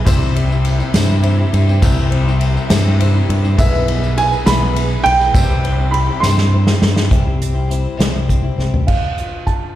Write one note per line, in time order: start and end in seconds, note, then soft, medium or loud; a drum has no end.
0.00 7.06 E4 medium
0.05 1.79 C2 medium
0.05 0.81 C2 medium
0.05 0.35 C3 medium
0.05 3.55 C3 medium
0.05 1.79 C3 medium
0.05 0.35 E3 medium
0.05 3.54 G3 medium
0.05 0.34 G3 medium
0.05 3.54 C4 medium
0.05 0.35 C4 medium
0.05 3.55 C4 medium
0.05 0.36 E4 medium
0.05 3.55 E4 medium
0.05 3.55 G4 medium
0.05 0.36 C5 loud
0.05 3.55 C5 medium
0.05 3.55 E5 medium
0.05 kick loud
0.05 ride medium
0.05 tambourine loud
0.23 tambourine soft
0.35 0.50 G3 medium
0.35 0.50 C4 medium
0.35 0.50 E4 medium
0.35 0.48 C5 medium
0.35 ride medium
0.49 0.80 G3 medium
0.49 0.79 C4 medium
0.49 0.78 E4 medium
0.49 0.77 C5 medium
0.49 tambourine soft
0.65 ride medium
0.65 tambourine soft
0.78 0.93 G3 soft
0.78 0.93 C4 medium
0.78 0.94 E4 medium
0.78 0.94 C5 medium
0.78 tambourine soft
0.93 1.44 G2 medium
0.93 1.23 C3 loud
0.93 1.23 E3 medium
0.93 1.21 G3 loud
0.93 1.22 C4 loud
0.93 1.23 E4 medium
0.93 1.24 C5 loud
0.93 snare loud
0.93 ride medium
0.93 tambourine loud
1.23 1.38 G3 medium
1.23 1.38 C4 medium
1.23 1.38 E4 medium
1.23 1.36 C5 medium
1.23 ride medium
1.37 1.68 G3 medium
1.37 1.68 C4 soft
1.37 1.67 E4 medium
1.37 1.65 C5 medium
1.53 1.78 G2 medium
1.53 ride medium
1.66 1.82 G3 medium
1.66 1.82 C4 medium
1.66 1.82 E4 medium
1.66 1.82 C5 medium
1.66 tambourine soft
1.82 3.54 C2 medium
1.82 2.57 C2 loud
1.82 2.11 C3 medium
1.82 3.55 C3 medium
1.82 2.12 E3 medium
1.82 2.10 G3 medium
1.82 2.11 C4 medium
1.82 2.12 E4 medium
1.82 2.13 C5 loud
1.82 kick loud
1.82 ride medium
1.82 tambourine medium
1.99 tambourine soft
2.11 2.26 G3 medium
2.11 2.26 C4 medium
2.11 2.25 E4 medium
2.11 2.24 C5 medium
2.11 ride medium
2.26 2.56 G3 medium
2.26 2.55 C4 medium
2.26 2.54 E4 medium
2.26 2.53 C5 medium
2.26 tambourine soft
2.41 ride medium
2.41 tambourine soft
2.54 2.69 G3 medium
2.54 2.69 C4 medium
2.54 2.69 E4 medium
2.54 2.69 C5 medium
2.54 tambourine soft
2.69 3.20 G2 loud
2.69 2.99 C3 medium
2.69 2.99 E3 medium
2.69 2.97 G3 loud
2.69 2.98 C4 loud
2.69 2.99 E4 medium
2.69 3.00 C5 loud
2.69 snare loud
2.69 ride medium
2.69 tambourine medium
2.98 3.14 G3 medium
2.98 3.14 C4 medium
2.98 3.13 E4 medium
2.98 3.11 C5 medium
2.98 ride medium
3.13 3.44 G3 medium
3.13 3.43 C4 soft
3.13 3.42 E4 medium
3.13 3.41 C5 medium
3.29 3.54 G2 loud
3.29 ride medium
3.42 3.58 G3 soft
3.42 3.58 C4 medium
3.42 3.57 E4 medium
3.42 3.58 C5 medium
3.42 tambourine soft
3.57 4.33 B1 loud
3.57 5.31 B1 medium
3.57 3.87 B2 medium
3.57 5.31 B2 medium
3.57 3.87 E3 medium
3.57 5.31 G#3 medium
3.57 5.33 B3 medium
3.57 3.86 B3 medium
3.57 5.31 B3 medium
3.57 5.31 E4 medium
3.57 3.87 E4 medium
3.57 5.32 G#4 medium
3.57 3.88 G#4 medium
3.57 5.32 B4 medium
3.57 3.88 B4 medium
3.57 4.19 E5 medium
3.57 5.32 E5 medium
3.57 kick loud
3.57 ride medium
3.57 tambourine medium
3.75 tambourine soft
3.87 4.02 B3 medium
3.87 4.03 E4 medium
3.87 4.02 G#4 medium
3.87 4.00 B4 medium
3.87 ride medium
4.01 4.32 B3 soft
4.01 4.31 E4 medium
4.01 4.30 G#4 medium
4.01 4.29 B4 medium
4.01 tambourine soft
4.18 4.48 G#5 loud
4.18 ride medium
4.18 tambourine soft
4.31 4.45 B3 soft
4.31 4.46 E4 soft
4.31 4.46 G#4 medium
4.31 4.46 B4 medium
4.31 tambourine soft
4.45 4.96 B1 loud
4.45 4.75 B2 medium
4.45 4.75 E3 medium
4.45 4.74 B3 medium
4.45 4.75 E4 medium
4.45 4.76 G#4 medium
4.45 4.76 B4 medium
4.45 5.07 B5 loud
4.45 snare loud
4.45 ride medium
4.45 tambourine loud
4.75 4.90 B3 medium
4.75 4.91 E4 medium
4.75 4.89 G#4 medium
4.75 4.88 B4 medium
4.75 ride medium
4.89 5.21 B3 soft
4.89 5.20 E4 soft
4.89 5.18 G#4 medium
4.89 5.18 B4 medium
5.04 5.30 B1 medium
5.04 5.95 G5 loud
5.04 ride medium
5.19 5.34 B3 soft
5.19 5.34 E4 medium
5.19 5.34 G#4 medium
5.19 5.34 B4 medium
5.19 tambourine soft
5.33 6.09 C2 medium
5.33 7.07 C2 medium
5.33 7.09 C3 medium
5.33 5.63 C3 medium
5.33 7.08 C3 soft
5.33 5.64 E3 medium
5.33 7.07 G3 medium
5.33 5.62 G3 medium
5.33 7.09 C4 medium
5.33 7.08 C4 medium
5.33 5.63 C4 medium
5.33 5.64 E4 medium
5.33 7.08 E4 medium
5.33 7.09 G4 medium
5.33 5.64 C5 medium
5.33 7.08 C5 medium
5.33 7.09 E5 medium
5.33 kick loud
5.33 ride medium
5.33 tambourine loud
5.51 tambourine soft
5.63 5.78 G3 medium
5.63 5.79 C4 medium
5.63 5.78 E4 medium
5.63 5.77 C5 medium
5.63 ride medium
5.78 6.09 G3 medium
5.78 6.09 C4 soft
5.78 6.08 E4 soft
5.78 6.07 C5 medium
5.91 6.23 B5 medium
5.91 ride medium
6.08 6.22 G3 soft
6.08 6.22 C4 soft
6.08 6.23 E4 soft
6.08 6.23 C5 medium
6.20 6.72 G2 medium
6.20 6.52 C3 medium
6.20 6.52 E3 medium
6.20 6.50 G3 medium
6.20 6.51 C4 medium
6.20 6.53 E4 medium
6.20 6.53 C5 medium
6.20 6.84 C6 medium
6.20 snare medium
6.20 tambourine loud
6.38 snare medium
6.52 6.67 G3 medium
6.52 6.66 C4 medium
6.52 6.65 E4 medium
6.52 6.64 C5 medium
6.65 6.96 G3 soft
6.65 6.95 C4 soft
6.65 6.94 E4 soft
6.65 6.93 C5 medium
6.65 snare medium
6.82 7.07 G2 medium
6.82 snare loud
6.94 7.10 G3 medium
6.94 7.10 C4 medium
6.94 7.11 E4 medium
6.94 7.10 C5 medium
6.94 snare medium
7.10 7.86 C2 medium
7.10 7.25 C3 medium
7.10 7.99 C3 medium
7.10 7.25 E3 medium
7.10 7.26 G3 medium
7.10 7.26 C4 medium
7.10 7.24 E4 medium
7.10 8.58 G4 medium
7.10 7.23 C5 medium
7.10 kick loud
7.10 closed hi-hat medium
7.24 7.56 G3 soft
7.24 7.54 C4 soft
7.24 7.54 E4 medium
7.24 7.52 C5 medium
7.42 8.27 C4 medium
7.42 closed hi-hat medium
7.53 7.66 G3 soft
7.53 7.68 C4 soft
7.53 7.69 E4 medium
7.53 7.69 C5 medium
7.68 7.98 G3 medium
7.68 7.98 C4 medium
7.68 7.98 E4 medium
7.68 7.98 C5 medium
7.68 closed hi-hat medium
7.73 8.86 E4 soft
7.97 8.49 C2 medium
7.97 8.88 G2 medium
7.97 8.13 C3 medium
7.97 8.14 E3 medium
7.97 8.14 G3 medium
7.97 8.13 C4 medium
7.97 8.12 E4 medium
7.97 8.11 C5 medium
7.97 snare loud
7.97 closed hi-hat medium
8.12 8.43 G3 medium
8.12 8.43 C4 medium
8.12 8.41 E4 medium
8.12 8.40 C5 medium
8.29 8.84 C4 medium
8.29 kick medium
8.29 closed hi-hat soft
8.42 8.55 G3 soft
8.42 8.57 C4 medium
8.42 8.57 E4 soft
8.42 8.57 C5 medium
8.56 8.83 C2 medium
8.56 8.87 G3 medium
8.56 8.88 C4 medium
8.56 8.88 E4 soft
8.56 8.88 G4 soft
8.56 8.88 C5 medium
8.56 snare soft
8.74 floor tom medium
8.87 9.75 D3 soft
8.87 9.42 F5 medium
8.87 kick medium
8.87 crash medium
9.18 9.75 F4 soft
9.18 closed hi-hat soft
9.46 9.75 A5 medium
9.46 kick soft
9.46 closed hi-hat soft